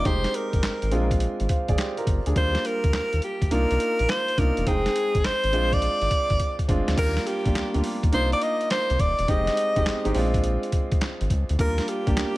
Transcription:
0.04 F1 G#3 C4 D#4 G4 C5, kick, closed hi-hat
0.24 snare, closed hi-hat
0.34 A#4, closed hi-hat
0.53 G1, kick, closed hi-hat
0.63 G#1, snare, clap, closed hi-hat
0.82 G#1, closed hi-hat
0.91 A#1 G#3 C4 D4 F4, closed hi-hat
1.11 kick, closed hi-hat
1.20 closed hi-hat
1.40 G#1, closed hi-hat
1.49 C5 F5, kick, closed hi-hat
1.68 G#1 G#4 D5, kick, closed hi-hat
1.78 G4 C5, snare, clap, closed hi-hat
1.97 F4 A#4, closed hi-hat
2.07 G1, kick, closed hi-hat
2.26 D2 D4 G#4, closed hi-hat
2.36 D#2 G3 A#3 D4 F4 C5, kick, closed hi-hat
2.55 snare, closed hi-hat
2.65 A#4, closed hi-hat
2.84 D2, kick, closed hi-hat
2.93 D#2, snare, clap, closed hi-hat
3.13 D#2, closed hi-hat
3.22 G4, closed hi-hat
3.42 D2, kick, closed hi-hat
3.51 C2 A#3 D4 D#4 F4 A#4, closed hi-hat
3.71 C2, closed hi-hat
3.80 closed hi-hat
3.99 A#1, closed hi-hat
4.09 C5, snare, clap, closed hi-hat
4.28 closed hi-hat
4.37 C2 A#3 D4 D#4 F4 A#4, kick, closed hi-hat
4.57 E1, closed hi-hat
4.66 F1 G#3 C4 D#4 G#4 G5, kick, closed hi-hat
4.86 snare, closed hi-hat
4.96 closed hi-hat
5.15 G1, kick, closed hi-hat
5.24 G#1 C5, snare, clap, closed hi-hat
5.44 G#1, closed hi-hat
5.53 A#1 G#3 C4 D4 F4, closed hi-hat
5.72 D5, kick, closed hi-hat
5.82 closed hi-hat
6.02 G#1, closed hi-hat
6.11 kick, closed hi-hat
6.30 G#1, kick, closed hi-hat
6.40 kick, closed hi-hat
6.59 kick, closed hi-hat
6.68 G1 G#3 C4 D4 F4, kick, closed hi-hat
6.88 D2, snare, closed hi-hat
6.97 D#2 G3 A#3 D4 F4 A#4, kick, closed hi-hat, crash
7.17 snare, closed hi-hat
7.27 G4, closed hi-hat
7.45 A#1 G3 A#3 D4 F4, kick, closed hi-hat
7.55 D2, snare, clap, closed hi-hat
7.74 D2 G3 A#3 D4 F4, closed hi-hat
7.84 open hi-hat
8.03 D#2, kick, closed hi-hat
8.12 C2 A#3 D4 D#4 F4 C5, closed hi-hat
8.32 D5, closed hi-hat
8.42 D#5, closed hi-hat
8.61 closed hi-hat
8.70 C5, snare, clap, closed hi-hat
8.90 C2, closed hi-hat
8.99 D#1 D5, kick, closed hi-hat
9.19 E1, closed hi-hat
9.28 F1 G#3 C4 D#4 G4 D#5, kick, closed hi-hat
9.47 snare, closed hi-hat
9.57 closed hi-hat
9.76 F1 G#3 C4 D#4 G4, kick, closed hi-hat
9.86 G#1, snare, clap, closed hi-hat
10.05 G#1 G#3 C4 D#4 G4, closed hi-hat
10.14 A#1 G#3 C4 D4 F4, open hi-hat
10.34 kick, closed hi-hat
10.44 closed hi-hat
10.63 closed hi-hat
10.72 kick, closed hi-hat
10.92 kick, closed hi-hat
11.01 snare, clap, closed hi-hat
11.21 G#1, closed hi-hat
11.30 C#2, kick, closed hi-hat
11.49 D2, closed hi-hat
11.59 D#2 G3 A#3 D4 F4 A#4, kick, closed hi-hat
11.78 snare, closed hi-hat
11.88 G4, closed hi-hat
12.07 A#1 G3 A#3 D4 G4, kick, closed hi-hat
12.17 D2, snare, clap, closed hi-hat

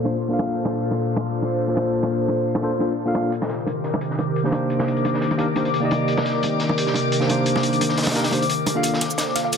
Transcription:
Already playing: A#2 D4 F4 A4 C5
0.03 A#3 D4 F4 A4 C5, high bongo
0.29 A#3 D4 F4 A4
0.33 F5
0.39 high bongo
0.65 high bongo
0.91 high bongo
1.16 high bongo
1.42 high bongo
1.68 A#3 D4 F4 A4 C5
1.74 A#3 D4 F4 A4, high bongo
1.79 C5
2.03 high bongo
2.28 high bongo
2.55 high bongo
2.62 A#3 D4 F4 A4 C5
2.79 A#3 D4 F4 A4 C5, high bongo
3.06 A#3 D4 F4 A4 F5
3.15 high bongo
3.32 C3 D#3 G4 A#4 D6, closed hi-hat
3.42 snare, high bongo
3.49 snare, closed hi-hat
3.67 closed hi-hat, high bongo
3.84 snare, closed hi-hat
3.94 high bongo
4.01 closed hi-hat
4.11 snare
4.19 closed hi-hat, high bongo
4.36 closed hi-hat
4.43 A#3 D4 D#4 G4 C5, snare
4.50 A#3 D4 D#4 G4, closed hi-hat, high bongo
4.55 C5
4.70 closed hi-hat
4.79 snare, high bongo
4.88 closed hi-hat
4.97 closed hi-hat
5.05 closed hi-hat, high bongo
5.14 snare
5.22 snare, closed hi-hat
5.30 closed hi-hat, high bongo
5.38 A#3 D4 D#4 G4 A#4, closed hi-hat
5.55 A#3 D4 D#4 G4 C5, closed hi-hat, high bongo
5.65 closed hi-hat
5.74 closed hi-hat
5.80 A#3 D#4 G4 D5
5.85 D#5
5.91 closed hi-hat, high bongo
6.08 closed hi-hat
6.17 snare, high bongo
6.25 snare, closed hi-hat
6.43 closed hi-hat, high bongo
6.60 snare, closed hi-hat
6.69 high bongo
6.78 closed hi-hat
6.87 snare
6.94 closed hi-hat, high bongo
7.12 closed hi-hat
7.20 A#3 D4 D#4 G4 C5, snare
7.26 A#3 D4 D#4 G4, closed hi-hat, high bongo
7.31 C5
7.46 closed hi-hat
7.56 snare, high bongo
7.63 closed hi-hat
7.73 closed hi-hat
7.81 closed hi-hat, high bongo
7.89 snare
7.97 snare, closed hi-hat
8.03 snare, closed hi-hat
8.07 snare, closed hi-hat, high bongo
8.11 A#3 D4 D#4, snare, closed hi-hat
8.15 G4 A#4, snare, closed hi-hat
8.24 snare, closed hi-hat
8.31 A#3 D4 D#4 G4 C5, closed hi-hat, high bongo
8.42 closed hi-hat
8.50 closed hi-hat
8.66 closed hi-hat, high bongo
8.74 A#3 D4 F4 A4 F5
8.83 A#3 F4 A4 C5 D6, closed hi-hat, shaker
8.94 snare
9.01 snare, closed hi-hat, shaker
9.10 shaker
9.18 snare, closed hi-hat, shaker
9.35 F5, snare, closed hi-hat
9.45 F5
9.53 closed hi-hat, shaker

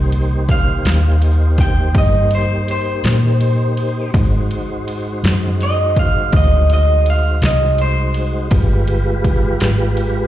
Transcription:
Already playing: C2 A#3 D#4 G4 C5
0.12 ride
0.49 F5, kick, ride
0.85 D#2, snare, ride
1.22 ride
1.58 G5, kick, snare, ride
1.95 G2 D#5, kick, ride
2.31 ride
2.35 C5
2.68 C5, ride
3.04 A#2, snare, ride
3.40 ride
3.77 ride
4.14 G#2 G#3 D#4 F#4 C5, kick, ride
4.51 ride
4.88 ride
5.24 F#2, snare, ride
5.61 D#5, ride
5.96 F5, kick, ride
6.32 D2, kick, ride
6.37 D#5
6.70 D#5, ride
7.06 ride
7.10 F5
7.42 C2 D#5, snare, ride
7.78 C5, ride
8.14 ride
8.51 G1 G#3 F4 G4 B4, kick, ride
8.87 ride
9.24 kick, ride
9.60 G#1, snare, ride
9.97 ride

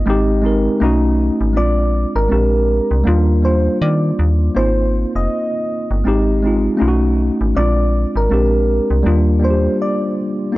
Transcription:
Already playing: D#5
0.06 G#1 G#3 C4 D#4
0.10 G4
0.42 G#3 C4 D#4
0.46 A#4
0.80 B1 A3 C#4 D#4
0.84 F#4
1.41 G#1
1.53 A#1 G#3 C4 D4 D5
1.58 F4
2.16 G#1 A#4
2.28 A#1 G#3 C4 D4 G4
2.91 C2
3.04 D#2 G3 A#3 D4
3.08 F4
3.42 G3 A#3 D4 F4 C5
3.82 D#3 D5
4.19 D#2
4.55 G#1 A#3 C4 D#4 C5
4.59 F4
5.15 F1 D#5
5.91 G1
6.04 G#1 G#3 C4 D#4
6.08 G4
6.43 G#3 C4 D#4
6.47 F4
6.77 A3 C#4 D#4
6.82 B1 F4
6.88 F#4
7.41 G#1
7.55 A#1 G#3 C4 D4 D5
7.59 F4
8.16 G#1 A#4
8.29 A#1 G#3 C4 D4 G4
8.90 C2
9.03 D#2 G3 A#3 D4
9.07 F4
9.40 G3 A#3 D4
9.44 F4 C5
9.50 G4
9.82 D5
10.52 A#3 C4

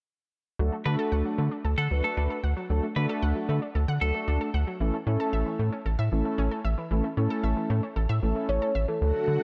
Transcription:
0.59 D2 F#3 A3 D4 F#4 A4
0.72 A3
0.86 D3 A3 D4 F#4 A4 B4
0.99 A4
1.12 D2 F#5
1.25 F#3
1.38 D3 A3
1.51 D4
1.65 D2 A4
1.78 D3 A4 F#5
1.91 D2 F#3 A3 D4 F#4 B4
2.04 A3 A4
2.17 D2 D4
2.30 A4
2.44 D2 F#5
2.57 F#3
2.70 D2 F#3 A3 D4 F#4 A4
2.83 A3
2.96 D3 A3 D4 F#4 A4 B4
3.09 A4
3.22 D2 F#5
3.36 F#3
3.49 D3 A3
3.62 D4
3.75 D2 A4
3.88 D3 F#5
4.01 D2 F#3 A3 D4 F#4 A4
4.15 A3
4.28 D2 D4
4.41 A4
4.54 D2 F#5
4.67 F#3
4.80 A1 E3 A3 C#4 E4 A4
4.94 A3
5.07 A2 A3 C#4 E4 A4
5.20 A4
5.33 A1 E5
5.46 E3
5.59 A2 A3
5.73 C#4
5.86 A1 A4
5.99 A2 E5
6.12 A1 E3 A3 C#4 E4 A4
6.25 A3
6.38 A1 C#4
6.51 A4
6.65 A1 E5
6.78 E3
6.91 A1 E3 A3 C#4 E4 A4
7.04 A3
7.17 A2 A3 C#4 E4 A4
7.30 A4
7.44 A1 E5
7.57 E3
7.70 A2 A3
7.83 C#4
7.96 A1 A4
8.09 A2 E5
8.23 A1 E3 A3 C#4 E4 A4
8.36 A3
8.49 A1 C#4 C#5
8.62 A4
8.75 A1 E5
8.88 E3 A4
9.01 D2 D3 F#3 A3 F#4 A4
9.28 D3

